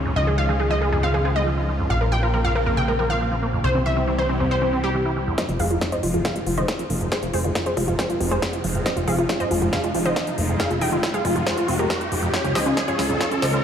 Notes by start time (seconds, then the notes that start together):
Already playing: C#2 D#3 F3 G#3 C#4 F4
0.06 F2
0.16 C#2 D#3 D#5
0.27 F3 G#4
0.38 F3 F5
0.49 D#3 G#4
0.60 F3 G#4
0.71 F3 D#5
0.81 G#3 G#4
0.92 F2 G#4
1.03 C4 F5
1.14 F3 G#4
1.25 C4 G#4
1.36 G#3 D#5
1.47 F3
1.58 F4
1.69 F3
1.79 F2
1.90 A#1 C#3 F3 A#3 C4 F5
2.01 F3 A#4
2.12 F3 G5
2.23 F4 A#4
2.34 F3 A#4
2.45 F2 F5
2.55 F3 A#4
2.66 F2 A#4
2.77 C3 G5
2.88 G#3 A#4
2.99 F3 A#4
3.10 D#3 F5
3.21 F3
3.32 F3
3.42 A#3
3.53 F2
3.64 C2 C3 E3 G3 E4 G4 C5
3.75 E3 C4
3.86 E3 E5
3.97 E3 C4
4.08 E3 C4
4.18 E3 C5
4.29 G3 C4
4.40 E2 C4
4.51 C4 C5
4.62 E3 C4
4.73 C4
4.84 G3 G4
4.95 E3
5.05 E4
5.16 E3
5.27 E2
5.38 C3 F3 G#3 D#4 F4 C5 D#5, kick, snare, closed hi-hat, riser
5.49 F1 F3 F4, closed hi-hat
5.60 F1 F3 G#4 F5, open hi-hat
5.70 F4, closed hi-hat
5.81 F3 F4, kick, snare, closed hi-hat
5.92 F2 C5 D#5, closed hi-hat
6.03 F1 F3 F4, open hi-hat
6.14 F2 F4, closed hi-hat
6.25 C3 G#4 F5, kick, snare, closed hi-hat
6.36 G#3 F4, closed hi-hat
6.47 F1 F3 F4, open hi-hat
6.57 D#3 C5 D#5, closed hi-hat
6.68 F3, kick, snare, closed hi-hat
6.79 F3, closed hi-hat
6.90 F1 A#3, open hi-hat
7.01 F2, closed hi-hat
7.12 D#3 G#4 C5, kick, snare, closed hi-hat
7.23 F1 F3 F4, closed hi-hat
7.34 F1 F3 G#4 C5, open hi-hat
7.44 D#3 F4, closed hi-hat
7.55 F3 F4, kick, snare, closed hi-hat
7.66 F3 G#4 C5, closed hi-hat
7.77 F1 G#3 F4, kick, open hi-hat
7.88 F2 F4, closed hi-hat
7.99 C4 G#4 C5, kick, snare, closed hi-hat
8.10 F3 F4, closed hi-hat
8.21 F1 C4 F4, open hi-hat
8.31 G#3 G#4 C5, closed hi-hat
8.42 F3, kick, snare, closed hi-hat
8.53 F4, closed hi-hat
8.64 F1 F3, open hi-hat
8.75 F2, closed hi-hat
8.86 F3 C5 D#5, kick, snare, closed hi-hat
8.97 F1 F3 F4, closed hi-hat
9.07 F1 F3 G#4 F5, open hi-hat
9.18 F4, closed hi-hat
9.29 F3 F4, kick, snare, closed hi-hat
9.40 F2 C5 D#5, closed hi-hat
9.51 F1 F3 F4, open hi-hat
9.62 F2 F4, closed hi-hat
9.73 C3 G#4 F5, kick, snare, closed hi-hat
9.84 G#3 F4, closed hi-hat
9.95 F1 F3 F4, open hi-hat
10.05 D#3 C5 D#5, closed hi-hat
10.16 F3, kick, snare, closed hi-hat
10.27 F3, closed hi-hat
10.38 F1 A#3, open hi-hat
10.49 F2, closed hi-hat
10.60 D#3 G#4 F5, kick, snare, closed hi-hat
10.71 F1 F3 F4, closed hi-hat
10.81 F1 F3 D#5 G5, open hi-hat
10.92 D#3 F4, closed hi-hat
11.03 F3 F4, kick, snare, closed hi-hat
11.14 F3 G#4 F5, closed hi-hat
11.25 F1 G#3 F4, kick, open hi-hat
11.36 F2 F4, closed hi-hat
11.46 C4 G#4 C5, kick, snare, closed hi-hat
11.57 F3 F4, closed hi-hat
11.68 F1 C4 F4, open hi-hat
11.79 G#3 G4 A#4, closed hi-hat
11.90 F3, kick, snare, closed hi-hat
12.01 F4, closed hi-hat
12.12 F1 F3, open hi-hat
12.23 F2, closed hi-hat
12.34 C#3 F3 F4 C#5, kick, snare, closed hi-hat
12.44 C#2 F3 C#4, closed hi-hat
12.55 C#2 F3 C5 D#5, snare, open hi-hat
12.66 C#4 F4, closed hi-hat
12.77 F3 C#4, kick, snare, closed hi-hat
12.88 F2 F4 C#5, closed hi-hat
12.99 C#2 F3 C#4, snare, open hi-hat
13.10 F2 C#4, closed hi-hat
13.20 F3 F4 C#5, kick, snare, closed hi-hat
13.31 F3 C#4, closed hi-hat
13.42 C#2 F3 C5 D#5, snare, open hi-hat
13.53 C#4 F4, closed hi-hat